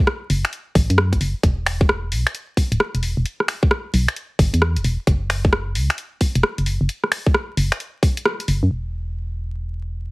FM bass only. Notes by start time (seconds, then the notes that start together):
0.30 F#1
0.75 A1
0.90 F#2
1.13 E1
1.21 F#1
1.43 E1
2.12 B1
2.72 D1
2.95 E1
3.17 E1
3.94 B1
4.39 G1
4.54 E2
4.76 D1
4.84 E1
5.07 F#1
5.75 C#2
6.36 E1
6.58 F#1
6.81 F#1
7.57 F#1
8.48 F#1
8.63 F#2
8.71 E1